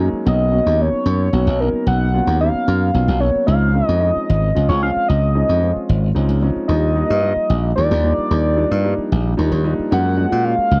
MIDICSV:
0, 0, Header, 1, 5, 480
1, 0, Start_track
1, 0, Tempo, 536673
1, 227, Time_signature, 6, 3, 24, 8
1, 9660, End_track
2, 0, Start_track
2, 0, Title_t, "Analog synth lead"
2, 0, Program_c, 0, 81
2, 248, Note_on_c, 0, 75, 96
2, 727, Note_on_c, 0, 73, 104
2, 740, Note_off_c, 0, 75, 0
2, 1433, Note_on_c, 0, 70, 86
2, 1446, Note_off_c, 0, 73, 0
2, 1670, Note_off_c, 0, 70, 0
2, 1677, Note_on_c, 0, 78, 110
2, 2119, Note_off_c, 0, 78, 0
2, 2152, Note_on_c, 0, 77, 111
2, 2864, Note_on_c, 0, 73, 87
2, 2877, Note_off_c, 0, 77, 0
2, 3097, Note_off_c, 0, 73, 0
2, 3102, Note_on_c, 0, 77, 108
2, 3460, Note_off_c, 0, 77, 0
2, 3460, Note_on_c, 0, 75, 108
2, 3580, Note_off_c, 0, 75, 0
2, 3580, Note_on_c, 0, 75, 100
2, 4184, Note_off_c, 0, 75, 0
2, 4193, Note_on_c, 0, 73, 83
2, 4302, Note_off_c, 0, 73, 0
2, 4318, Note_on_c, 0, 77, 91
2, 4536, Note_off_c, 0, 77, 0
2, 4547, Note_on_c, 0, 75, 89
2, 5471, Note_off_c, 0, 75, 0
2, 5972, Note_on_c, 0, 75, 108
2, 6903, Note_off_c, 0, 75, 0
2, 6937, Note_on_c, 0, 74, 111
2, 8585, Note_off_c, 0, 74, 0
2, 8881, Note_on_c, 0, 78, 109
2, 9342, Note_on_c, 0, 77, 109
2, 9356, Note_off_c, 0, 78, 0
2, 9660, Note_off_c, 0, 77, 0
2, 9660, End_track
3, 0, Start_track
3, 0, Title_t, "Grand piano"
3, 0, Program_c, 1, 0
3, 0, Note_on_c, 1, 54, 73
3, 0, Note_on_c, 1, 56, 64
3, 0, Note_on_c, 1, 58, 61
3, 0, Note_on_c, 1, 61, 62
3, 0, Note_on_c, 1, 63, 74
3, 210, Note_off_c, 1, 54, 0
3, 212, Note_off_c, 1, 58, 0
3, 212, Note_off_c, 1, 61, 0
3, 214, Note_off_c, 1, 63, 0
3, 223, Note_on_c, 1, 54, 64
3, 225, Note_on_c, 1, 61, 60
3, 226, Note_on_c, 1, 58, 65
3, 228, Note_on_c, 1, 59, 60
3, 228, Note_on_c, 1, 63, 75
3, 230, Note_off_c, 1, 56, 0
3, 428, Note_off_c, 1, 54, 0
3, 429, Note_off_c, 1, 58, 0
3, 429, Note_off_c, 1, 61, 0
3, 430, Note_off_c, 1, 59, 0
3, 430, Note_off_c, 1, 63, 0
3, 465, Note_on_c, 1, 54, 58
3, 465, Note_on_c, 1, 66, 59
3, 466, Note_on_c, 1, 58, 57
3, 468, Note_on_c, 1, 59, 55
3, 469, Note_on_c, 1, 61, 57
3, 669, Note_off_c, 1, 54, 0
3, 669, Note_off_c, 1, 58, 0
3, 669, Note_off_c, 1, 66, 0
3, 670, Note_off_c, 1, 59, 0
3, 671, Note_off_c, 1, 61, 0
3, 710, Note_on_c, 1, 58, 48
3, 711, Note_on_c, 1, 54, 56
3, 713, Note_on_c, 1, 61, 52
3, 714, Note_on_c, 1, 63, 59
3, 715, Note_on_c, 1, 59, 52
3, 1114, Note_off_c, 1, 54, 0
3, 1114, Note_off_c, 1, 58, 0
3, 1115, Note_off_c, 1, 61, 0
3, 1116, Note_off_c, 1, 59, 0
3, 1116, Note_off_c, 1, 63, 0
3, 1185, Note_on_c, 1, 59, 57
3, 1185, Note_on_c, 1, 61, 56
3, 1186, Note_on_c, 1, 54, 53
3, 1187, Note_on_c, 1, 58, 52
3, 1190, Note_on_c, 1, 66, 71
3, 1389, Note_off_c, 1, 54, 0
3, 1389, Note_off_c, 1, 58, 0
3, 1389, Note_off_c, 1, 59, 0
3, 1389, Note_off_c, 1, 61, 0
3, 1391, Note_off_c, 1, 66, 0
3, 1436, Note_on_c, 1, 58, 54
3, 1439, Note_on_c, 1, 54, 60
3, 1439, Note_on_c, 1, 61, 54
3, 1439, Note_on_c, 1, 63, 71
3, 1440, Note_on_c, 1, 59, 55
3, 1836, Note_off_c, 1, 58, 0
3, 1838, Note_off_c, 1, 54, 0
3, 1838, Note_off_c, 1, 59, 0
3, 1838, Note_off_c, 1, 61, 0
3, 1838, Note_off_c, 1, 63, 0
3, 1911, Note_on_c, 1, 59, 53
3, 1912, Note_on_c, 1, 54, 63
3, 1912, Note_on_c, 1, 58, 62
3, 1913, Note_on_c, 1, 61, 61
3, 1914, Note_on_c, 1, 65, 66
3, 2112, Note_off_c, 1, 54, 0
3, 2112, Note_off_c, 1, 58, 0
3, 2112, Note_off_c, 1, 59, 0
3, 2113, Note_off_c, 1, 61, 0
3, 2113, Note_off_c, 1, 65, 0
3, 2150, Note_on_c, 1, 61, 49
3, 2151, Note_on_c, 1, 54, 52
3, 2151, Note_on_c, 1, 59, 51
3, 2151, Note_on_c, 1, 63, 59
3, 2153, Note_on_c, 1, 58, 51
3, 2554, Note_off_c, 1, 54, 0
3, 2554, Note_off_c, 1, 59, 0
3, 2554, Note_off_c, 1, 61, 0
3, 2554, Note_off_c, 1, 63, 0
3, 2555, Note_off_c, 1, 58, 0
3, 2623, Note_on_c, 1, 54, 59
3, 2624, Note_on_c, 1, 58, 49
3, 2626, Note_on_c, 1, 65, 62
3, 2627, Note_on_c, 1, 61, 58
3, 2628, Note_on_c, 1, 59, 53
3, 2828, Note_off_c, 1, 54, 0
3, 2828, Note_off_c, 1, 58, 0
3, 2829, Note_off_c, 1, 65, 0
3, 2830, Note_off_c, 1, 59, 0
3, 2830, Note_off_c, 1, 61, 0
3, 2860, Note_on_c, 1, 58, 54
3, 2862, Note_on_c, 1, 54, 67
3, 2863, Note_on_c, 1, 59, 55
3, 2865, Note_on_c, 1, 61, 56
3, 2866, Note_on_c, 1, 66, 60
3, 3088, Note_off_c, 1, 61, 0
3, 3099, Note_on_c, 1, 53, 69
3, 3101, Note_on_c, 1, 60, 62
3, 3102, Note_on_c, 1, 61, 71
3, 3104, Note_off_c, 1, 58, 0
3, 3104, Note_on_c, 1, 56, 66
3, 3104, Note_on_c, 1, 63, 80
3, 3105, Note_off_c, 1, 54, 0
3, 3105, Note_off_c, 1, 59, 0
3, 3107, Note_off_c, 1, 66, 0
3, 3306, Note_off_c, 1, 53, 0
3, 3307, Note_off_c, 1, 60, 0
3, 3307, Note_off_c, 1, 61, 0
3, 3308, Note_off_c, 1, 56, 0
3, 3308, Note_off_c, 1, 63, 0
3, 3343, Note_on_c, 1, 53, 56
3, 3344, Note_on_c, 1, 56, 58
3, 3346, Note_on_c, 1, 61, 56
3, 3347, Note_on_c, 1, 63, 75
3, 3348, Note_on_c, 1, 60, 55
3, 3548, Note_off_c, 1, 53, 0
3, 3548, Note_off_c, 1, 56, 0
3, 3549, Note_off_c, 1, 61, 0
3, 3550, Note_off_c, 1, 60, 0
3, 3550, Note_off_c, 1, 63, 0
3, 3585, Note_on_c, 1, 60, 45
3, 3586, Note_on_c, 1, 56, 49
3, 3586, Note_on_c, 1, 63, 55
3, 3587, Note_on_c, 1, 53, 61
3, 3590, Note_on_c, 1, 61, 53
3, 3991, Note_off_c, 1, 60, 0
3, 3992, Note_off_c, 1, 53, 0
3, 3992, Note_off_c, 1, 56, 0
3, 3992, Note_off_c, 1, 63, 0
3, 3993, Note_off_c, 1, 61, 0
3, 4069, Note_on_c, 1, 53, 65
3, 4069, Note_on_c, 1, 56, 55
3, 4069, Note_on_c, 1, 60, 57
3, 4071, Note_on_c, 1, 61, 54
3, 4073, Note_on_c, 1, 65, 72
3, 4271, Note_off_c, 1, 53, 0
3, 4271, Note_off_c, 1, 56, 0
3, 4271, Note_off_c, 1, 60, 0
3, 4272, Note_off_c, 1, 61, 0
3, 4272, Note_off_c, 1, 65, 0
3, 4313, Note_on_c, 1, 53, 58
3, 4313, Note_on_c, 1, 61, 59
3, 4314, Note_on_c, 1, 56, 57
3, 4316, Note_on_c, 1, 60, 51
3, 4317, Note_on_c, 1, 65, 61
3, 4715, Note_off_c, 1, 53, 0
3, 4715, Note_off_c, 1, 56, 0
3, 4715, Note_off_c, 1, 61, 0
3, 4716, Note_off_c, 1, 60, 0
3, 4717, Note_off_c, 1, 65, 0
3, 4783, Note_on_c, 1, 53, 57
3, 4783, Note_on_c, 1, 56, 59
3, 4783, Note_on_c, 1, 61, 53
3, 4784, Note_on_c, 1, 60, 51
3, 4786, Note_on_c, 1, 63, 66
3, 4987, Note_off_c, 1, 56, 0
3, 4988, Note_off_c, 1, 53, 0
3, 4988, Note_off_c, 1, 60, 0
3, 4988, Note_off_c, 1, 61, 0
3, 4989, Note_off_c, 1, 63, 0
3, 5025, Note_on_c, 1, 60, 52
3, 5028, Note_on_c, 1, 53, 59
3, 5028, Note_on_c, 1, 61, 51
3, 5029, Note_on_c, 1, 56, 51
3, 5030, Note_on_c, 1, 65, 53
3, 5430, Note_off_c, 1, 60, 0
3, 5432, Note_off_c, 1, 53, 0
3, 5432, Note_off_c, 1, 61, 0
3, 5433, Note_off_c, 1, 56, 0
3, 5433, Note_off_c, 1, 65, 0
3, 5496, Note_on_c, 1, 53, 62
3, 5497, Note_on_c, 1, 60, 63
3, 5497, Note_on_c, 1, 61, 62
3, 5499, Note_on_c, 1, 56, 62
3, 5502, Note_on_c, 1, 63, 76
3, 5704, Note_off_c, 1, 53, 0
3, 5704, Note_off_c, 1, 60, 0
3, 5704, Note_off_c, 1, 61, 0
3, 5705, Note_off_c, 1, 56, 0
3, 5707, Note_off_c, 1, 63, 0
3, 5741, Note_on_c, 1, 56, 60
3, 5742, Note_on_c, 1, 53, 77
3, 5744, Note_on_c, 1, 60, 66
3, 5746, Note_on_c, 1, 61, 70
3, 5746, Note_on_c, 1, 63, 71
3, 5970, Note_off_c, 1, 53, 0
3, 5973, Note_off_c, 1, 63, 0
3, 5983, Note_on_c, 1, 55, 56
3, 5984, Note_off_c, 1, 56, 0
3, 5984, Note_on_c, 1, 53, 65
3, 5985, Note_off_c, 1, 60, 0
3, 5985, Note_on_c, 1, 58, 61
3, 5985, Note_on_c, 1, 62, 57
3, 5986, Note_off_c, 1, 61, 0
3, 5986, Note_on_c, 1, 63, 72
3, 6187, Note_off_c, 1, 55, 0
3, 6188, Note_off_c, 1, 53, 0
3, 6188, Note_off_c, 1, 58, 0
3, 6188, Note_off_c, 1, 62, 0
3, 6189, Note_off_c, 1, 63, 0
3, 6217, Note_on_c, 1, 53, 54
3, 6218, Note_on_c, 1, 55, 54
3, 6218, Note_on_c, 1, 58, 59
3, 6222, Note_on_c, 1, 62, 57
3, 6223, Note_on_c, 1, 63, 70
3, 6424, Note_off_c, 1, 53, 0
3, 6424, Note_off_c, 1, 58, 0
3, 6425, Note_off_c, 1, 55, 0
3, 6427, Note_off_c, 1, 62, 0
3, 6427, Note_off_c, 1, 63, 0
3, 6457, Note_on_c, 1, 53, 55
3, 6459, Note_on_c, 1, 55, 47
3, 6459, Note_on_c, 1, 65, 53
3, 6462, Note_on_c, 1, 58, 44
3, 6464, Note_on_c, 1, 63, 68
3, 6866, Note_off_c, 1, 53, 0
3, 6867, Note_off_c, 1, 55, 0
3, 6867, Note_off_c, 1, 65, 0
3, 6869, Note_off_c, 1, 58, 0
3, 6870, Note_off_c, 1, 63, 0
3, 6943, Note_on_c, 1, 58, 55
3, 6943, Note_on_c, 1, 63, 59
3, 6945, Note_on_c, 1, 53, 60
3, 6946, Note_on_c, 1, 55, 60
3, 6946, Note_on_c, 1, 62, 51
3, 7147, Note_off_c, 1, 58, 0
3, 7147, Note_off_c, 1, 63, 0
3, 7148, Note_off_c, 1, 53, 0
3, 7148, Note_off_c, 1, 55, 0
3, 7148, Note_off_c, 1, 62, 0
3, 7186, Note_on_c, 1, 58, 60
3, 7188, Note_on_c, 1, 53, 54
3, 7189, Note_on_c, 1, 55, 60
3, 7189, Note_on_c, 1, 62, 58
3, 7192, Note_on_c, 1, 63, 74
3, 7591, Note_off_c, 1, 53, 0
3, 7591, Note_off_c, 1, 58, 0
3, 7592, Note_off_c, 1, 55, 0
3, 7592, Note_off_c, 1, 62, 0
3, 7593, Note_off_c, 1, 63, 0
3, 7661, Note_on_c, 1, 62, 66
3, 7662, Note_on_c, 1, 53, 75
3, 7664, Note_on_c, 1, 58, 66
3, 7665, Note_on_c, 1, 55, 71
3, 7667, Note_on_c, 1, 63, 75
3, 7866, Note_off_c, 1, 53, 0
3, 7866, Note_off_c, 1, 62, 0
3, 7867, Note_off_c, 1, 58, 0
3, 7868, Note_off_c, 1, 55, 0
3, 7869, Note_off_c, 1, 63, 0
3, 7906, Note_on_c, 1, 58, 63
3, 7906, Note_on_c, 1, 63, 77
3, 7907, Note_on_c, 1, 53, 67
3, 7908, Note_on_c, 1, 62, 62
3, 7909, Note_on_c, 1, 55, 63
3, 8310, Note_off_c, 1, 58, 0
3, 8310, Note_off_c, 1, 63, 0
3, 8311, Note_off_c, 1, 53, 0
3, 8311, Note_off_c, 1, 62, 0
3, 8312, Note_off_c, 1, 55, 0
3, 8381, Note_on_c, 1, 53, 74
3, 8383, Note_on_c, 1, 55, 70
3, 8384, Note_on_c, 1, 58, 60
3, 8385, Note_on_c, 1, 62, 66
3, 8387, Note_on_c, 1, 63, 89
3, 8585, Note_off_c, 1, 53, 0
3, 8587, Note_off_c, 1, 55, 0
3, 8587, Note_off_c, 1, 58, 0
3, 8587, Note_off_c, 1, 62, 0
3, 8588, Note_off_c, 1, 63, 0
3, 8622, Note_on_c, 1, 62, 70
3, 8623, Note_on_c, 1, 53, 79
3, 8624, Note_on_c, 1, 58, 61
3, 8624, Note_on_c, 1, 63, 86
3, 8627, Note_on_c, 1, 55, 69
3, 8848, Note_off_c, 1, 58, 0
3, 8850, Note_off_c, 1, 53, 0
3, 8862, Note_on_c, 1, 58, 74
3, 8863, Note_off_c, 1, 62, 0
3, 8864, Note_off_c, 1, 63, 0
3, 8864, Note_on_c, 1, 53, 66
3, 8864, Note_on_c, 1, 61, 74
3, 8866, Note_off_c, 1, 55, 0
3, 8866, Note_on_c, 1, 56, 63
3, 8867, Note_on_c, 1, 66, 75
3, 9066, Note_off_c, 1, 58, 0
3, 9067, Note_off_c, 1, 53, 0
3, 9067, Note_off_c, 1, 61, 0
3, 9068, Note_off_c, 1, 56, 0
3, 9068, Note_off_c, 1, 66, 0
3, 9096, Note_on_c, 1, 58, 61
3, 9097, Note_on_c, 1, 66, 74
3, 9098, Note_on_c, 1, 53, 68
3, 9098, Note_on_c, 1, 61, 58
3, 9101, Note_on_c, 1, 56, 59
3, 9303, Note_off_c, 1, 58, 0
3, 9303, Note_off_c, 1, 66, 0
3, 9304, Note_off_c, 1, 53, 0
3, 9304, Note_off_c, 1, 61, 0
3, 9305, Note_off_c, 1, 56, 0
3, 9344, Note_on_c, 1, 61, 55
3, 9345, Note_on_c, 1, 56, 59
3, 9345, Note_on_c, 1, 58, 58
3, 9345, Note_on_c, 1, 65, 52
3, 9347, Note_on_c, 1, 66, 63
3, 9660, Note_off_c, 1, 56, 0
3, 9660, Note_off_c, 1, 58, 0
3, 9660, Note_off_c, 1, 61, 0
3, 9660, Note_off_c, 1, 65, 0
3, 9660, Note_off_c, 1, 66, 0
3, 9660, End_track
4, 0, Start_track
4, 0, Title_t, "Slap bass"
4, 0, Program_c, 2, 36
4, 235, Note_on_c, 2, 35, 85
4, 529, Note_off_c, 2, 35, 0
4, 593, Note_on_c, 2, 39, 69
4, 789, Note_off_c, 2, 39, 0
4, 945, Note_on_c, 2, 42, 91
4, 1144, Note_off_c, 2, 42, 0
4, 1189, Note_on_c, 2, 35, 81
4, 1287, Note_off_c, 2, 35, 0
4, 1313, Note_on_c, 2, 35, 86
4, 1509, Note_off_c, 2, 35, 0
4, 1669, Note_on_c, 2, 35, 85
4, 1965, Note_off_c, 2, 35, 0
4, 2030, Note_on_c, 2, 39, 71
4, 2227, Note_off_c, 2, 39, 0
4, 2395, Note_on_c, 2, 42, 87
4, 2590, Note_off_c, 2, 42, 0
4, 2632, Note_on_c, 2, 35, 80
4, 2729, Note_off_c, 2, 35, 0
4, 2755, Note_on_c, 2, 35, 82
4, 2950, Note_off_c, 2, 35, 0
4, 3110, Note_on_c, 2, 37, 86
4, 3406, Note_off_c, 2, 37, 0
4, 3476, Note_on_c, 2, 41, 72
4, 3670, Note_off_c, 2, 41, 0
4, 3841, Note_on_c, 2, 32, 92
4, 4034, Note_off_c, 2, 32, 0
4, 4081, Note_on_c, 2, 37, 88
4, 4175, Note_off_c, 2, 37, 0
4, 4193, Note_on_c, 2, 37, 80
4, 4389, Note_off_c, 2, 37, 0
4, 4556, Note_on_c, 2, 37, 82
4, 4850, Note_off_c, 2, 37, 0
4, 4911, Note_on_c, 2, 41, 69
4, 5107, Note_off_c, 2, 41, 0
4, 5270, Note_on_c, 2, 32, 93
4, 5467, Note_off_c, 2, 32, 0
4, 5506, Note_on_c, 2, 37, 69
4, 5605, Note_off_c, 2, 37, 0
4, 5622, Note_on_c, 2, 37, 80
4, 5822, Note_off_c, 2, 37, 0
4, 5981, Note_on_c, 2, 39, 74
4, 6280, Note_off_c, 2, 39, 0
4, 6352, Note_on_c, 2, 43, 74
4, 6548, Note_off_c, 2, 43, 0
4, 6706, Note_on_c, 2, 34, 89
4, 6904, Note_off_c, 2, 34, 0
4, 6954, Note_on_c, 2, 39, 81
4, 7050, Note_off_c, 2, 39, 0
4, 7074, Note_on_c, 2, 39, 83
4, 7269, Note_off_c, 2, 39, 0
4, 7431, Note_on_c, 2, 39, 81
4, 7726, Note_off_c, 2, 39, 0
4, 7793, Note_on_c, 2, 43, 70
4, 7988, Note_off_c, 2, 43, 0
4, 8156, Note_on_c, 2, 34, 88
4, 8350, Note_off_c, 2, 34, 0
4, 8395, Note_on_c, 2, 39, 91
4, 8490, Note_off_c, 2, 39, 0
4, 8512, Note_on_c, 2, 39, 85
4, 8707, Note_off_c, 2, 39, 0
4, 8872, Note_on_c, 2, 42, 88
4, 9166, Note_off_c, 2, 42, 0
4, 9230, Note_on_c, 2, 46, 71
4, 9426, Note_off_c, 2, 46, 0
4, 9581, Note_on_c, 2, 37, 81
4, 9660, Note_off_c, 2, 37, 0
4, 9660, End_track
5, 0, Start_track
5, 0, Title_t, "Muted slap bass strokes"
5, 116, Note_on_c, 9, 29, 34
5, 206, Note_off_c, 9, 29, 0
5, 828, Note_on_c, 9, 29, 33
5, 918, Note_off_c, 9, 29, 0
5, 2275, Note_on_c, 9, 29, 31
5, 2364, Note_off_c, 9, 29, 0
5, 3000, Note_on_c, 9, 29, 34
5, 3089, Note_off_c, 9, 29, 0
5, 3721, Note_on_c, 9, 29, 32
5, 3811, Note_off_c, 9, 29, 0
5, 4439, Note_on_c, 9, 29, 31
5, 4528, Note_off_c, 9, 29, 0
5, 5153, Note_on_c, 9, 29, 36
5, 5242, Note_off_c, 9, 29, 0
5, 5868, Note_on_c, 9, 29, 32
5, 5958, Note_off_c, 9, 29, 0
5, 6584, Note_on_c, 9, 29, 34
5, 6674, Note_off_c, 9, 29, 0
5, 7318, Note_on_c, 9, 29, 35
5, 7408, Note_off_c, 9, 29, 0
5, 8033, Note_on_c, 9, 29, 32
5, 8122, Note_off_c, 9, 29, 0
5, 8759, Note_on_c, 9, 29, 34
5, 8849, Note_off_c, 9, 29, 0
5, 9464, Note_on_c, 9, 29, 34
5, 9553, Note_off_c, 9, 29, 0
5, 9660, End_track
0, 0, End_of_file